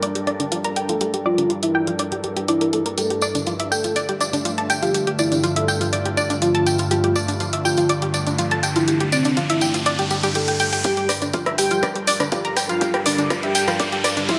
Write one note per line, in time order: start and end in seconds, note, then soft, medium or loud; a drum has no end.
0.00 10.83 G2 medium
0.00 2.94 G3 medium
0.00 2.94 D4 medium
0.00 2.94 A4 medium
0.00 2.94 A#4 medium
0.00 0.07 D5 loud
0.00 closed hi-hat medium
0.15 0.22 G4 medium
0.15 closed hi-hat soft
0.27 0.32 D5 loud
0.27 closed hi-hat soft
0.40 0.47 D4 medium
0.40 closed hi-hat soft
0.52 0.60 F4 medium
0.52 closed hi-hat medium
0.64 0.72 A#5 loud
0.64 closed hi-hat soft
0.76 0.84 G5 loud
0.76 closed hi-hat soft
0.89 0.96 F4 medium
0.89 1.15 A4 loud
0.89 closed hi-hat soft
1.01 1.09 G4 medium
1.01 closed hi-hat medium
1.14 1.21 G4 medium
1.14 closed hi-hat soft
1.26 1.51 F4 medium
1.26 1.30 D5 loud
1.38 1.45 D4 medium
1.38 closed hi-hat soft
1.50 1.58 F4 medium
1.50 closed hi-hat soft
1.63 1.89 E4 medium
1.63 1.74 E5 medium
1.63 closed hi-hat medium
1.75 1.82 G5 loud
1.87 1.95 F4 medium
1.87 closed hi-hat soft
1.99 2.04 D5 medium
1.99 closed hi-hat medium
2.12 2.19 G4 medium
2.12 closed hi-hat soft
2.24 2.32 G4 medium
2.24 closed hi-hat soft
2.37 2.41 G4 medium
2.37 closed hi-hat soft
2.48 2.83 E4 medium
2.48 2.60 D5 medium
2.48 closed hi-hat medium
2.61 2.68 A#4 medium
2.61 closed hi-hat soft
2.73 2.78 A4 medium
2.73 closed hi-hat soft
2.86 2.97 A#4 medium
2.86 closed hi-hat soft
2.98 10.81 G2 medium
2.98 10.81 D3 medium
2.98 10.81 A3 medium
2.98 10.81 F4 medium
2.98 3.05 G4 medium
2.98 3.23 A4 loud
2.98 6.87 E5 medium
2.98 closed hi-hat medium
2.98 tambourine soft
3.10 3.18 G4 medium
3.10 closed hi-hat soft
3.22 3.27 D5 loud
3.22 tambourine medium
3.35 3.42 D4 medium
3.35 closed hi-hat soft
3.35 tambourine soft
3.46 3.55 F4 medium
3.46 closed hi-hat soft
3.46 tambourine soft
3.60 3.70 E5 medium
3.60 closed hi-hat medium
3.71 3.97 A4 medium
3.71 3.79 G5 loud
3.71 tambourine medium
3.84 3.91 F4 medium
3.84 closed hi-hat soft
3.84 tambourine soft
3.96 4.01 D5 loud
3.96 closed hi-hat medium
3.96 tambourine soft
4.09 4.16 G4 medium
4.09 closed hi-hat soft
4.21 4.25 D5 loud
4.21 closed hi-hat soft
4.21 tambourine medium
4.33 4.41 D4 medium
4.33 closed hi-hat soft
4.33 tambourine soft
4.45 4.53 F4 medium
4.45 closed hi-hat medium
4.45 tambourine soft
4.58 4.65 A5 loud
4.58 closed hi-hat soft
4.70 4.78 G5 medium
4.70 closed hi-hat soft
4.70 tambourine medium
4.83 4.90 F4 medium
4.83 5.08 G4 medium
4.83 closed hi-hat soft
4.83 tambourine soft
4.94 5.02 G4 medium
4.94 closed hi-hat medium
4.94 tambourine soft
5.07 5.14 G4 medium
5.07 closed hi-hat soft
5.19 5.45 E4 loud
5.19 5.24 D5 loud
5.19 tambourine medium
5.32 5.39 D4 medium
5.32 closed hi-hat soft
5.32 tambourine soft
5.44 5.51 F4 medium
5.44 closed hi-hat soft
5.44 tambourine soft
5.56 5.82 A4 medium
5.56 5.67 E5 medium
5.56 closed hi-hat medium
5.68 5.76 G5 medium
5.68 tambourine medium
5.81 5.88 F4 medium
5.81 closed hi-hat soft
5.81 tambourine medium
5.93 5.97 D5 loud
5.93 closed hi-hat medium
5.93 tambourine soft
6.06 6.13 G4 medium
6.06 closed hi-hat soft
6.17 6.22 D5 loud
6.17 closed hi-hat soft
6.17 tambourine medium
6.30 6.37 D4 medium
6.30 closed hi-hat soft
6.30 tambourine soft
6.42 6.50 F4 medium
6.42 6.77 F4 loud
6.42 closed hi-hat medium
6.42 tambourine soft
6.55 6.62 A5 loud
6.55 closed hi-hat soft
6.67 6.74 G5 loud
6.67 closed hi-hat soft
6.67 tambourine medium
6.78 6.86 F4 medium
6.78 closed hi-hat soft
6.78 tambourine soft
6.91 10.81 D4 medium
6.91 7.17 F4 loud
6.91 6.99 G4 medium
6.91 closed hi-hat medium
6.91 tambourine soft
6.91 riser medium
7.04 7.11 G4 medium
7.04 closed hi-hat soft
7.16 7.20 D5 loud
7.16 tambourine medium
7.28 7.36 D4 medium
7.28 closed hi-hat soft
7.28 tambourine soft
7.40 7.48 F4 medium
7.40 closed hi-hat soft
7.40 tambourine soft
7.53 7.64 E5 medium
7.53 closed hi-hat medium
7.65 7.91 F4 loud
7.65 7.73 G5 loud
7.65 tambourine medium
7.77 7.85 F4 medium
7.77 closed hi-hat soft
7.77 tambourine soft
7.89 7.94 D5 medium
7.89 closed hi-hat medium
7.89 tambourine soft
8.02 8.09 G4 medium
8.02 closed hi-hat soft
8.14 8.19 D5 medium
8.14 closed hi-hat soft
8.14 tambourine medium
8.27 8.34 D4 medium
8.27 closed hi-hat soft
8.27 tambourine soft
8.38 8.46 F4 medium
8.38 closed hi-hat medium
8.38 tambourine soft
8.51 8.59 A5 loud
8.51 closed hi-hat soft
8.63 8.71 G5 loud
8.63 closed hi-hat soft
8.63 tambourine medium
8.76 9.02 E4 loud
8.76 8.83 F4 medium
8.76 closed hi-hat soft
8.76 tambourine soft
8.88 8.96 G4 medium
8.88 closed hi-hat medium
8.88 tambourine soft
9.00 9.08 G4 medium
9.00 closed hi-hat soft
9.12 9.38 C4 medium
9.12 9.17 D5 loud
9.12 closed hi-hat soft
9.12 tambourine medium
9.24 9.32 D4 medium
9.24 closed hi-hat soft
9.24 tambourine soft
9.37 9.45 F4 medium
9.37 closed hi-hat soft
9.37 tambourine soft
9.50 9.75 E4 medium
9.50 9.60 E5 medium
9.50 closed hi-hat medium
9.61 9.69 G5 loud
9.61 closed hi-hat soft
9.61 tambourine medium
9.74 9.81 F4 medium
9.74 closed hi-hat soft
9.74 tambourine soft
9.86 9.91 D5 loud
9.86 closed hi-hat medium
9.86 tambourine soft
9.99 10.06 G4 medium
9.99 closed hi-hat soft
10.11 10.15 G4 medium
10.11 closed hi-hat soft
10.11 tambourine medium
10.23 10.31 G4 medium
10.23 closed hi-hat soft
10.23 tambourine soft
10.35 10.43 G4 medium
10.35 10.70 A4 medium
10.35 closed hi-hat medium
10.35 tambourine soft
10.48 10.52 G5 medium
10.48 closed hi-hat soft
10.60 10.65 G5 loud
10.60 closed hi-hat medium
10.60 tambourine medium
10.73 10.80 G5 medium
10.73 closed hi-hat soft
10.73 tambourine soft
10.84 14.39 G2 medium
10.84 14.39 G3 medium
10.84 14.39 D4 medium
10.84 11.10 G4 loud
10.84 10.92 G4 medium
10.84 14.39 A4 medium
10.84 14.39 A#4 medium
10.84 11.10 G5 loud
10.84 kick loud
10.84 closed hi-hat medium
10.84 tambourine soft
10.84 riser medium
10.97 11.04 G4 medium
10.97 closed hi-hat soft
11.09 11.14 D5 loud
11.09 cross-stick soft
11.09 open hi-hat loud
11.09 tambourine medium
11.22 11.29 D4 medium
11.22 closed hi-hat soft
11.22 tambourine medium
11.33 11.41 F4 medium
11.33 kick loud
11.33 closed hi-hat medium
11.33 tambourine soft
11.46 11.57 E5 medium
11.46 cross-stick soft
11.46 closed hi-hat soft
11.58 11.84 G4 medium
11.58 11.84 G5 loud
11.58 11.66 G5 loud
11.58 open hi-hat loud
11.58 tambourine medium
11.70 11.78 F4 medium
11.70 closed hi-hat soft
11.70 tambourine soft
11.83 11.88 D5 medium
11.83 kick loud
11.83 cross-stick soft
11.83 closed hi-hat medium
11.83 tambourine soft
11.96 12.03 G4 medium
11.96 closed hi-hat soft
12.07 12.12 D5 loud
12.07 open hi-hat loud
12.07 tambourine medium
12.20 12.27 D4 medium
12.20 cross-stick medium
12.20 closed hi-hat soft
12.20 tambourine soft
12.32 12.40 F4 medium
12.32 kick loud
12.32 closed hi-hat medium
12.32 tambourine soft
12.45 12.52 A#5 loud
12.45 closed hi-hat soft
12.57 12.64 G5 loud
12.57 cross-stick soft
12.57 open hi-hat loud
12.57 tambourine medium
12.69 12.77 F4 medium
12.69 12.95 F4 medium
12.69 12.95 F5 loud
12.69 closed hi-hat soft
12.69 tambourine soft
12.81 12.89 G4 medium
12.81 kick loud
12.81 closed hi-hat medium
12.81 tambourine soft
12.94 13.01 G4 medium
12.94 cross-stick soft
12.94 closed hi-hat soft
13.06 13.32 D4 medium
13.06 13.32 D5 medium
13.06 13.11 D5 loud
13.06 open hi-hat loud
13.06 tambourine medium
13.18 13.26 D4 medium
13.18 closed hi-hat soft
13.18 tambourine medium
13.30 13.38 F4 medium
13.30 kick loud
13.30 cross-stick soft
13.30 closed hi-hat medium
13.30 tambourine soft
13.43 13.69 G4 medium
13.43 13.54 E5 medium
13.43 13.69 G5 loud
13.43 closed hi-hat soft
13.55 13.63 G5 loud
13.55 open hi-hat loud
13.55 tambourine medium
13.67 13.75 F4 medium
13.67 cross-stick soft
13.67 closed hi-hat soft
13.67 tambourine medium
13.80 13.84 D5 medium
13.80 kick loud
13.80 closed hi-hat medium
13.80 tambourine soft
13.92 14.00 G4 medium
13.92 closed hi-hat soft
14.04 14.09 D5 loud
14.04 cross-stick soft
14.04 open hi-hat loud
14.04 tambourine medium
14.17 14.24 D4 medium
14.17 closed hi-hat soft
14.17 tambourine soft
14.28 14.39 E4 loud
14.28 14.37 F4 medium
14.28 14.39 E5 medium
14.28 kick loud
14.28 closed hi-hat medium
14.28 tambourine soft